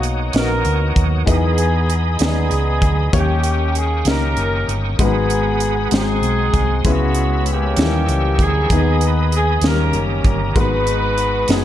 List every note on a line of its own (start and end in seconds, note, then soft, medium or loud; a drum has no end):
0.00 0.30 B1 medium
0.00 0.31 B2 medium
0.00 0.32 A#3 medium
0.00 1.30 A#3 medium
0.00 0.32 D#4 medium
0.00 0.34 D#4 medium
0.00 0.35 F#4 medium
0.00 0.35 A#4 medium
0.00 1.24 C#5 medium
0.00 0.35 D#5 medium
0.00 1.26 F#5 medium
0.00 1.26 D#6 medium
0.00 closed hi-hat soft
0.33 0.63 A#1 medium
0.33 0.98 B3 medium
0.33 0.98 D#4 medium
0.33 1.25 D#4 medium
0.33 0.99 F#4 medium
0.33 1.24 F#4 medium
0.33 0.98 A#4 medium
0.33 0.99 D#5 medium
0.33 snare loud
0.33 closed hi-hat medium
0.38 1.02 A#4 loud
0.65 0.94 D2 medium
0.65 closed hi-hat soft
0.96 1.25 D#2 medium
0.96 kick medium
0.96 closed hi-hat medium
1.26 2.16 E2 loud
1.26 2.16 E3 medium
1.26 1.90 B3 medium
1.26 2.18 B3 medium
1.26 1.90 D#4 medium
1.26 2.18 D#4 medium
1.26 1.91 G#4 medium
1.26 3.12 G#4 medium
1.26 2.18 G#4 medium
1.26 1.91 D#5 loud
1.26 3.12 D#5 medium
1.26 3.12 B5 medium
1.26 5.88 D#6 medium
1.26 kick medium
1.26 closed hi-hat medium
1.58 closed hi-hat medium
1.90 closed hi-hat medium
2.19 2.49 D#2 medium
2.19 2.83 B3 medium
2.19 2.84 D#4 medium
2.19 2.84 G#4 medium
2.19 2.27 D5 medium
2.19 snare loud
2.19 closed hi-hat medium
2.23 3.11 B3 medium
2.23 3.11 D#4 medium
2.23 3.11 G#4 medium
2.27 2.87 D#5 medium
2.51 2.80 C#2 medium
2.51 closed hi-hat soft
2.82 3.11 D2 medium
2.82 kick medium
2.82 closed hi-hat soft
3.12 4.02 D#2 medium
3.12 4.02 D#3 medium
3.12 3.76 A#3 medium
3.12 3.77 C#4 medium
3.12 3.77 D#4 medium
3.12 3.77 G4 medium
3.12 4.97 A#4 medium
3.12 3.77 C#5 loud
3.12 4.97 G5 medium
3.12 4.97 C#6 medium
3.12 kick loud
3.12 closed hi-hat medium
3.17 4.04 A#3 medium
3.17 4.04 C#4 medium
3.17 3.77 G4 medium
3.44 closed hi-hat medium
3.75 4.08 G#4 medium
3.75 closed hi-hat medium
4.05 4.34 C#2 medium
4.05 4.70 A#3 medium
4.05 4.70 C#4 medium
4.05 4.86 C#4 medium
4.05 4.70 D#4 medium
4.05 4.70 G4 medium
4.05 4.86 G4 medium
4.05 4.77 A#4 loud
4.05 4.70 D#5 medium
4.05 snare loud
4.05 closed hi-hat medium
4.37 4.66 F#1 medium
4.37 closed hi-hat soft
4.68 4.97 G1 medium
4.68 closed hi-hat soft
4.99 5.88 G#1 loud
4.99 5.88 G#2 medium
4.99 5.63 G#3 medium
4.99 5.63 B3 medium
4.99 5.63 D#4 medium
4.99 5.63 F#4 medium
4.99 5.92 G#4 medium
4.99 5.63 B4 medium
4.99 6.84 F#5 medium
4.99 5.92 B5 medium
4.99 kick loud
4.99 closed hi-hat medium
5.03 5.90 B3 medium
5.03 5.90 D#4 medium
5.03 5.90 G#4 medium
5.30 closed hi-hat medium
5.60 closed hi-hat medium
5.91 6.20 G#1 medium
5.91 6.81 G#2 medium
5.91 6.55 G#3 medium
5.91 7.76 G#3 medium
5.91 6.55 C4 medium
5.91 6.82 C4 medium
5.91 6.55 D#4 medium
5.91 6.82 D#4 medium
5.91 6.56 F#4 medium
5.91 6.82 G#4 loud
5.91 6.56 C5 medium
5.91 6.84 C6 medium
5.91 6.84 D#6 medium
5.91 snare loud
5.91 closed hi-hat medium
6.22 6.51 B1 medium
6.22 closed hi-hat soft
6.54 6.82 C2 medium
6.54 kick medium
6.54 closed hi-hat medium
6.85 7.74 C#2 loud
6.85 7.74 C#3 medium
6.85 7.48 G#3 medium
6.85 7.48 B3 medium
6.85 7.49 C#4 medium
6.85 7.49 E4 medium
6.85 7.49 B4 medium
6.85 7.77 C#5 medium
6.85 7.77 B5 medium
6.85 7.76 E6 medium
6.85 kick loud
6.85 closed hi-hat medium
6.89 7.76 B3 medium
6.89 7.45 F#4 medium
7.15 closed hi-hat medium
7.46 closed hi-hat medium
7.51 8.38 A#3 medium
7.51 8.38 C#4 medium
7.51 8.42 G4 loud
7.76 8.06 D#2 loud
7.76 8.67 E3 medium
7.76 8.42 G3 medium
7.76 8.42 C#4 medium
7.76 8.42 D#4 medium
7.76 8.42 E4 medium
7.76 7.85 A4 medium
7.76 9.62 D#5 medium
7.76 8.69 G5 medium
7.76 8.69 C#6 medium
7.76 8.70 E6 medium
7.76 snare loud
7.76 closed hi-hat medium
7.86 8.45 A#4 medium
8.08 8.37 C#2 loud
8.08 closed hi-hat soft
8.39 8.68 D2 medium
8.39 kick medium
8.39 closed hi-hat medium
8.43 9.30 B3 medium
8.43 9.30 D#4 medium
8.43 9.03 G#4 loud
8.70 9.59 D#2 loud
8.70 9.60 D#3 medium
8.70 9.34 B3 medium
8.70 9.35 D#4 medium
8.70 9.63 G#4 medium
8.70 9.35 G#4 medium
8.70 9.62 B5 medium
8.70 11.64 D#6 medium
8.70 kick loud
8.70 closed hi-hat medium
9.01 9.32 B4 medium
9.01 closed hi-hat medium
9.32 9.65 G#4 loud
9.32 closed hi-hat medium
9.61 9.91 D#2 loud
9.61 10.53 D#3 medium
9.61 10.27 G3 medium
9.61 10.27 A#3 medium
9.61 10.27 C#4 medium
9.61 10.28 D#4 medium
9.61 10.55 G4 medium
9.61 10.28 A#4 medium
9.61 10.55 C#5 medium
9.61 10.55 A#5 medium
9.61 snare loud
9.61 closed hi-hat medium
9.68 10.55 C#4 medium
9.68 10.55 G4 medium
9.68 10.01 A#4 loud
9.93 10.22 F#1 medium
9.93 closed hi-hat soft
10.25 10.53 G1 medium
10.25 10.56 A#4 medium
10.25 kick medium
10.25 closed hi-hat soft
10.56 11.45 G#1 loud
10.56 11.45 G#2 medium
10.56 11.19 G#3 medium
10.56 11.20 B3 medium
10.56 11.20 D#4 medium
10.56 11.47 D#4 medium
10.56 11.20 F#4 medium
10.56 11.47 F#4 medium
10.56 11.64 G#4 medium
10.56 10.63 A#4 medium
10.56 11.51 B4 loud
10.56 11.64 F#5 medium
10.56 11.64 B5 medium
10.56 kick medium
10.56 closed hi-hat medium
10.63 11.23 B4 medium
10.87 closed hi-hat medium
11.18 closed hi-hat medium
11.48 11.64 F#1 medium
11.48 11.64 G#3 medium
11.48 11.64 B3 medium
11.48 11.64 D#4 medium
11.48 11.64 F#4 medium
11.48 11.64 G#4 medium
11.48 11.64 B4 medium
11.48 snare loud
11.48 closed hi-hat medium